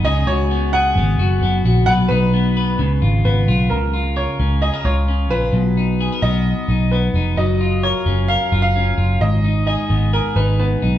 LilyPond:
<<
  \new Staff \with { instrumentName = "Upright piano" } { \time 4/4 \key cis \mixolydian \tempo 4 = 131 dis''8 cis''4 fis''2 r8 | fis''8 b'2 r8 b'4 | ais'4 cis''4 dis''8 cis''4 b'8~ | b'4. dis''4. b'4 |
dis''4 cis''4 eis''8. eis''4~ eis''16 | dis''4 dis''4 ais'8 b'8 b'4 | }
  \new Staff \with { instrumentName = "Clean electric guitar" } { \time 4/4 \key cis \mixolydian <cis gis'>8 fis'8 b8 gis'8 b8 fis'8 b8 fis'8 | <b, b'>8 dis'8 b8 b'8 cis8 eis'8 b8 eis'8 | cis8 eis'8 ais'8 cis'8 gis'16 ais'16 eis'8 cis'8 eis'8 | b,8 dis'8 gis'16 ais'16 b4 dis'8 b8 dis'8 |
fis8 eis'8 ais'8 cis'8 ais'8 eis'8 cis'8 eis'8 | gis,8 dis'8 gis'8 b8 gis'8 dis'8 b8 dis'8 | }
  \new Staff \with { instrumentName = "Picked electric bass" } { \clef bass \time 4/4 \key cis \mixolydian cis,8 cis,4. gis,,8 fis,,8 fis,,8 ais,,8 | b,,8 b,,4. cis,8 gis,,8 gis,,8 b,,8 | cis,4~ cis,16 r16 cis,8. r16 cis,4 ais,,8 | b,,4~ b,,16 r16 b,,8. r16 b,,4 eis,,8 |
fis,,4~ fis,,16 r16 fis,,8. r16 fis,,4 fis,,8 | gis,,4~ gis,,16 r16 gis,,8. r16 gis,,4 b,,8 | }
>>